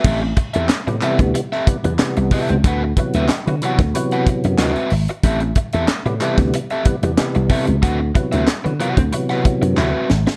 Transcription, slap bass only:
X:1
M:4/4
L:1/16
Q:1/4=92
K:Ador
V:1 name="Slap bass" clef=bass
A,,,2 z E,, z A,, z D,, z3 E,, z C,, z ^C,, | D,,2 z D,, z D, z D,, z3 F,, D,, z ^G,,, z | A,,,2 z E,, z A,, z D,, z3 E,, z C,, z ^C,, | D,,2 z D,, z D, z D,, z3 F,, D,, z ^G,,, z |]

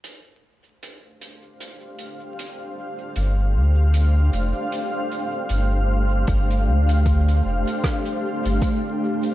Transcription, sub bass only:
X:1
M:4/4
L:1/16
Q:"Swing 16ths" 1/4=77
K:Cmix
V:1 name="Sub bass" clef=bass
z16 | G,,,2 D,,4 F,,, z4 z G,,,4 | G,,,2 D,,4 F,,, z4 G,,, z4 |]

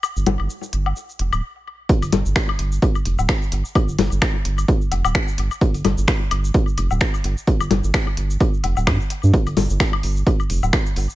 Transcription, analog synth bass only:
X:1
M:4/4
L:1/16
Q:"Swing 16ths" 1/4=129
K:Cm
V:1 name="Analog synth bass" clef=bass
z G,,, G,,, G,,, z2 G,,,2 z2 F,,, D,,, z4 | z G,,, G,,, G,,, z2 G,,,2 z2 F,,, D,,, z2 G,,, z | z G,,, G,,, G,,, z2 G,,,2 z2 F,,, D,,, z2 G,,, z | z G,,, G,,, G,,, z2 G,,,2 z2 F,,, D,,, z2 G,,, z |
z G,,, G,,, G,,, z2 G,,,2 z2 F,,, D,,, G,, z2 G,, | z G,,, G,,, G,,, z2 G,,,2 z2 F,,, D,,, z2 G,,, z |]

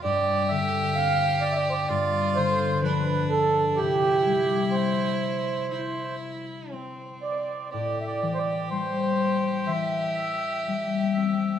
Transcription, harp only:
X:1
M:4/4
L:1/8
Q:1/4=62
K:Am
V:1 name="Harp" clef=bass
G,, D, C2 G,, D, F,2 | C, G, C2 E2 C2 | A,, E, G,2 E,2 G, C |]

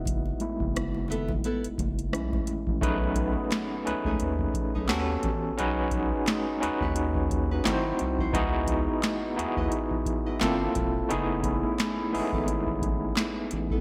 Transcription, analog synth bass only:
X:1
M:4/4
L:1/16
Q:"Swing 16ths" 1/4=87
K:F#dor
V:1 name="Analog synth bass" clef=bass
F,,,2 z F,,,4- F,,, z F,,, F,,,2 B,,,2 z A,,, | B,,,4 z2 C,, C,, D,,2 z B,,, D,,2 A,,,2 | B,,,4 z2 D,, D,,4- D,, G,,,2 ^B,,,2 | C,,4 z2 D,, D,, z4 =G,,,2 E,,,2 |
F,,,4 z2 G,,, G,,,4- G,,, z2 A,,,2 |]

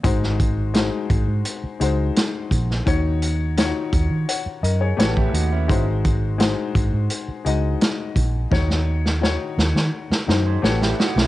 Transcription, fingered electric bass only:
X:1
M:4/4
L:1/16
Q:1/4=85
K:Abmix
V:1 name="Fingered electric bass" clef=bass
A,,,4- A,,, z A,,, A,, z2 D,,2 z2 B,,,2 | E,,4- E,, z E,, E, z2 G,,2 =A,,,2 E,,2 | A,,,4- A,,, z A,,, A,, z2 D,,2 z2 B,,,2 | E,,4- E,, z E,, E, z2 G,,2 =A,,,2 z =B,,, |]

